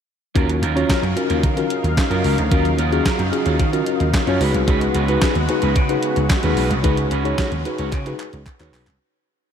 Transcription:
0.35 D#2 C#3 F#3 C#4 D#4 F4 F#4 A#4 F5, kick, closed hi-hat
0.49 muted clean electric guitar stroke, closed hi-hat
0.62 D#2 F#3 C#4 F4 A#4, closed hi-hat
0.76 F#3 C#4 F4 F#4 A#4 C#5, closed hi-hat
0.89 F#3 C#4 F4 A#4, kick, snare, clap, closed hi-hat
1.03 F#2, muted clean electric guitar stroke, closed hi-hat
1.16 C#4 F4 F#4 A#4, muted clean electric guitar stroke, closed hi-hat
1.29 D#2 F#3 C#4 F4 A#4, closed hi-hat
1.43 D#3, muted clean electric guitar stroke, kick, closed hi-hat
1.57 C#4 F4 F#4 A#4, muted clean electric guitar stroke, closed hi-hat
1.70 closed hi-hat
1.84 D#2, muted clean electric guitar stroke, closed hi-hat
1.97 muted clean electric guitar stroke, kick, snare, clap, closed hi-hat
2.10 F#2 F#3 C#4 F4 F#4 A#4, closed hi-hat
2.24 C#2 F#3 C#4 F4 A#4, open hi-hat
2.37 D2, muted clean electric guitar stroke, closed hi-hat
2.51 D#2 F#3 C#4 F4 F#4 A#4, kick, closed hi-hat
2.65 muted clean electric guitar stroke, closed hi-hat
2.78 D#2 F#3 C#4 F4 A#4, closed hi-hat
2.91 F#3 C#4 F4 F#4 G#4 A#4, closed hi-hat
3.05 F#3 C#4 F4 A#4, kick, snare, clap, closed hi-hat
3.19 F#2, muted clean electric guitar stroke, closed hi-hat
3.32 C#4 F4 F#4 G#4, muted clean electric guitar stroke, closed hi-hat
3.46 D#2 F#3 C#4 F4 C#5, closed hi-hat
3.59 D#3, muted clean electric guitar stroke, kick, closed hi-hat
3.73 C#4 F4 F#4 A#4, muted clean electric guitar stroke, closed hi-hat
3.86 closed hi-hat
4.00 D#2, muted clean electric guitar stroke, closed hi-hat
4.13 muted clean electric guitar stroke, kick, snare, clap, closed hi-hat
4.26 F#2 F#3 C#4 F4 F#4 C#5, closed hi-hat
4.40 C#2 C#3 G#3 B3 C#4 D#4 F#4 G#4 B4, open hi-hat
4.54 C2, muted clean electric guitar stroke, closed hi-hat
4.67 C#2 G#3 C#4 F#4 B4, kick, closed hi-hat
4.81 muted clean electric guitar stroke, closed hi-hat
4.94 C#2 G#3 C#4 F#4 B4, closed hi-hat
5.08 G#3 C#4 D#4 F#4 G#4 B4, closed hi-hat
5.21 G#3 C#4 F#4 B4, kick, snare, clap, closed hi-hat
5.35 D#2, muted clean electric guitar stroke, closed hi-hat
5.49 D#4 F#4 G#4 B4, muted clean electric guitar stroke, closed hi-hat
5.62 C#2 G#3 C#4 F#4 B4, closed hi-hat
5.75 C#3, muted clean electric guitar stroke, kick, closed hi-hat
5.89 D#4 F#4 G#4 B4, muted clean electric guitar stroke, closed hi-hat
6.03 closed hi-hat
6.16 C#2, muted clean electric guitar stroke, closed hi-hat
6.29 muted clean electric guitar stroke, kick, snare, clap, closed hi-hat
6.43 D#2 G#3 C#4 D#4 F#4 G#4 B4, closed hi-hat
6.57 B1 G#3 C#4 F#4 B4, open hi-hat
6.70 C2, muted clean electric guitar stroke, closed hi-hat
6.83 C#2 G#3 C#4 D#4 F#4 G#4 B4, kick, closed hi-hat
6.97 muted clean electric guitar stroke, closed hi-hat
7.11 C#2 G#3 C#4 F#4 B4, closed hi-hat
7.24 G#3 C#4 D#4 F#4 G#4 B4 C#5, closed hi-hat
7.38 G#3 C#4 F#4 B4, kick, snare, clap, closed hi-hat
7.52 D#2, muted clean electric guitar stroke, closed hi-hat
7.65 D#4 F#4 G#4 B4, muted clean electric guitar stroke, closed hi-hat
7.78 C#2 G#3 C#4 F#4 C#5, closed hi-hat
7.92 C#3, muted clean electric guitar stroke, kick, clap, closed hi-hat
8.06 D#4 F#4 G#4 B4, muted clean electric guitar stroke, closed hi-hat
8.19 clap, closed hi-hat
8.33 C#2, muted clean electric guitar stroke, closed hi-hat
8.46 muted clean electric guitar stroke, kick, clap, closed hi-hat
8.60 D#2 G#3 C#4 D#4 F#4 G#4 B4 C#5, clap, closed hi-hat
8.73 B1 G#3 C#4 F#4 B4, clap, open hi-hat
8.87 C2, muted clean electric guitar stroke, clap, closed hi-hat

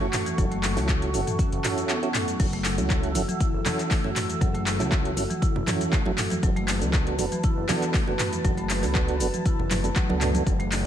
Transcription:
Already playing: A4 F#5 C#6
0.01 F#1 C#4 E4 F#4 A4
0.13 clap, mid tom, open hi-hat, shaker
0.26 E3, closed hi-hat, shaker
0.38 F#1 F#3 C#4 E4 F#4 A4, kick, closed hi-hat, shaker
0.52 A3, closed hi-hat
0.63 A3, clap, open hi-hat, shaker
0.76 C#2 C#4 E4 F#4 A4, clap, open hi-hat, shaker
0.89 kick, clap, closed hi-hat, shaker
1.02 F#4, closed hi-hat
1.14 F#1 C#4 E4 F#4 A4, open hi-hat, shaker
1.27 E3, closed hi-hat, mid tom, shaker
1.39 C#4, kick, closed hi-hat, shaker
1.52 F#1, closed hi-hat
1.64 C#4 E4 F#4 A4, clap, mid tom, open hi-hat, shaker
1.78 closed hi-hat, shaker
1.89 B3, clap, closed hi-hat, shaker
2.03 C#4 E4 F#4 A4, closed hi-hat
2.15 A3, clap, mid tom, open hi-hat, shaker
2.28 F#3, closed hi-hat, shaker
2.39 F#1 F#3 C#4 E4 F#4 A4 E6, kick, closed hi-hat, crash, shaker
2.53 A3, closed hi-hat, muted conga
2.65 A3, clap, open hi-hat, shaker
2.78 C#2 C#4 E4 F#4 A4, closed hi-hat, high conga, shaker
2.90 kick, clap, closed hi-hat, muted conga, shaker
3.03 F#4, closed hi-hat
3.15 F#1 C#4 E4 F#4 A4, open hi-hat, muted conga, high conga, shaker
3.29 E3, closed hi-hat, high conga, shaker
3.40 E4, kick, closed hi-hat, muted conga, shaker
3.54 F#1
3.65 E3 C#4 E4 F#4 A4, clap, open hi-hat, high conga, low conga, shaker
3.79 clap, closed hi-hat, muted conga, shaker
3.91 A3, kick, clap, open hi-hat, shaker
4.04 F#1 C#4 E4 F#4 A4, muted conga
4.16 clap, mid tom, open hi-hat, shaker
4.29 E3, closed hi-hat, muted conga, shaker
4.41 F#1 F#3 C#4 E4 F#4 A4, kick, closed hi-hat, low conga, shaker
4.54 A3, closed hi-hat, muted conga
4.66 A3, clap, open hi-hat, shaker
4.79 C#2 C#4 E4 F#4 A4, clap, closed hi-hat, high conga, shaker
4.92 kick, clap, closed hi-hat, muted conga, shaker
5.05 F#4, closed hi-hat
5.17 F#1 C#4 E4 F#4 A4, open hi-hat, muted conga, shaker
5.30 E3, closed hi-hat, high conga, shaker
5.42 E4, kick, closed hi-hat, muted conga, shaker
5.55 F#1, low conga
5.67 E3 C#4 E4 F#4 A4, clap, mid tom, open hi-hat, high conga, shaker
5.81 closed hi-hat, muted conga, shaker
5.92 A3, kick, clap, closed hi-hat, shaker
6.05 F#1 C#4 E4 F#4 A4, muted conga, high conga
6.18 clap, mid tom, open hi-hat, shaker
6.30 E3, closed hi-hat, muted conga, high conga, shaker
6.43 F#1 F#3 B3 D4 F#4 A4 B4 A5, kick, closed hi-hat, shaker
6.56 A3, closed hi-hat, muted conga
6.68 A3, clap, open hi-hat, shaker
6.81 C#2 B3 D4 F#4 A4, closed hi-hat, high conga, shaker
6.93 kick, clap, closed hi-hat, muted conga, shaker
7.07 F#4, closed hi-hat
7.18 F#1 B3 D4 F#4 A4, open hi-hat, muted conga, high conga, shaker
7.32 E3, closed hi-hat, high conga, shaker
7.43 E4, kick, closed hi-hat, muted conga, shaker
7.57 F#1
7.69 E3 B3 D4 F#4 A4, clap, open hi-hat, high conga, low conga, shaker
7.82 clap, closed hi-hat, muted conga, shaker
7.94 A3, kick, clap, open hi-hat, shaker
8.07 F#1 B3 D4 F#4 A4, muted conga
8.19 clap, mid tom, open hi-hat, shaker
8.33 E3, closed hi-hat, muted conga, shaker
8.44 F#1 F#3 B3 D4 F#4 A4, kick, closed hi-hat, low conga, shaker
8.57 A3, closed hi-hat, muted conga
8.70 A3, clap, open hi-hat, shaker
8.83 C#2 B3 D4 F#4 A4, clap, open hi-hat, high conga, shaker
8.95 kick, clap, closed hi-hat, muted conga, shaker
9.08 F#4, closed hi-hat
9.20 F#1 B3 D4 F#4 A4, open hi-hat, muted conga, shaker
9.34 E3, closed hi-hat, high conga, shaker
9.45 E4, kick, closed hi-hat, muted conga, shaker
9.59 F#1, low conga
9.71 A3, clap, mid tom, open hi-hat, high conga, shaker
9.84 B3 D4 F#4 A4, closed hi-hat, muted conga, shaker
9.96 F#3, kick, clap, closed hi-hat, shaker
10.09 C#2 F#3 B3 D4 F#4 A4, muted conga, high conga
10.21 A3, clap, mid tom, open hi-hat, shaker
10.34 E3, closed hi-hat, muted conga, high conga, shaker
10.46 F#1 F#3 C#4 D4 F#4 A4 C#5 F#5, kick, closed hi-hat, shaker
10.60 A3, closed hi-hat, muted conga
10.72 A3, clap, open hi-hat, shaker

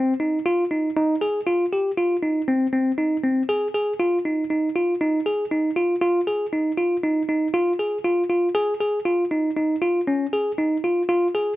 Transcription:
Already playing: C4
0.20 D#4
0.46 F4
0.71 D#4
0.97 D#4
1.21 G#4
1.47 F4
1.73 G4
1.98 F4
2.23 D#4
2.48 C4
2.73 C4
2.98 D#4
3.24 C4
3.49 G#4
3.74 G#4
4.00 F4
4.25 D#4
4.50 D#4
4.76 F4
5.01 D#4
5.26 G#4
5.51 D#4
5.76 F4
6.02 F4
6.27 G#4
6.53 D#4
6.78 F4
7.03 D#4
7.29 D#4
7.54 F4
7.79 G#4
8.04 F4
8.30 F4
8.55 G#4
8.80 G#4
9.05 F4
9.31 D#4
9.57 D#4
9.82 F4
10.07 C#4
10.33 G#4
10.58 D#4
10.84 F4
11.09 F4
11.35 G#4

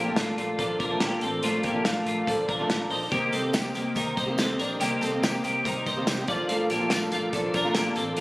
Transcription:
Already playing: A#1 A#3 F4 G4 A4 A#4 D5
0.07 A3 D4 F4
0.16 A#1 A3 F4, snare, closed hi-hat
0.26 D4 F4
0.37 A#1 A3 F4, closed hi-hat
0.58 A#1 F3 D4 F4 A4, kick, closed hi-hat
0.80 A#1 D4 A#4, kick, closed hi-hat
0.89 A#2 F3 A3 D4 F4
1.00 A#1 A#3 G4, snare, closed hi-hat
1.10 D4 F4
1.21 A1 C4 A4, closed hi-hat
1.42 F3 A3 D4 F4, closed hi-hat
1.63 A#1 A#3 G4, kick, closed hi-hat
1.73 A3 D4 F4
1.85 A#1 A3 F4, snare, closed hi-hat
1.93 D4 F4
2.06 A#1 A3 F4, closed hi-hat
2.27 A#1 F3 D4 F4 A4, kick, closed hi-hat
2.48 A#1 D4 A#4, kick, closed hi-hat
2.59 A#2 F3 A3 D4 F4
2.70 A#1, snare, closed hi-hat
2.79 D4 F4
2.90 A#1 D#4 C5, open hi-hat
3.10 C2 D#3 A#3 C4 G4 A#4 C5, kick, closed hi-hat, tambourine
3.14 D#5
3.32 C2 C4 A4, closed hi-hat, tambourine
3.42 A#3 C4 G4
3.53 C2 A#3 G4, snare, closed hi-hat, tambourine
3.63 A#3 C4 G4
3.74 C2 A#3 G4, closed hi-hat, tambourine
3.94 C2 D#3 A#3 C4 D#4 G4 A#4, kick, closed hi-hat, tambourine
4.17 C2 D#4 C5, kick, closed hi-hat, tambourine
4.27 C3 D#3 A#3 C4 G4
4.38 C2 C4 A4, snare, closed hi-hat, tambourine
4.47 A#3 C4 G4
4.59 A#1 D4 A#4, closed hi-hat, tambourine
4.78 C2 D#3 A#3 C4 G4, closed hi-hat, tambourine
5.01 C2 C4 A4, closed hi-hat, tambourine
5.11 A#3 C4 G4
5.22 C2 A#3 G4, snare, closed hi-hat, tambourine
5.32 A#3 C4 G4
5.44 C2 A#3 G4, closed hi-hat, tambourine
5.64 C2 D#3 A#3 C4 D#4 G4 A#4, kick, closed hi-hat, tambourine
5.86 C2 D#4 C5 A#5, kick, closed hi-hat, tambourine
5.96 C3 D#3 A#3 C4 G4
6.07 C2 G5, snare, closed hi-hat, tambourine
6.18 A#3 C4 G4
6.27 A#1 A#2 F3 D4 F4 A4 A#4 D5 F5, kick, closed hi-hat, tambourine
6.49 A3 F4, closed hi-hat, tambourine
6.70 A#1 A#3 G4, closed hi-hat, tambourine
6.80 A3 D4 F4
6.90 A#1 A3 F4, snare, closed hi-hat, tambourine
7.01 D4 F4
7.12 A#1 A3 F4, closed hi-hat, tambourine
7.33 A#1 F3 D4 F4 A4, kick, closed hi-hat, tambourine
7.54 A#1 D4 A#4, kick, closed hi-hat, tambourine
7.65 A#2 F3 A3 D4 F4
7.75 A#1 A#3 G4, snare, closed hi-hat, tambourine
7.86 D4 F4
7.96 A1 C4 A4, closed hi-hat, tambourine
8.17 A#1, closed hi-hat

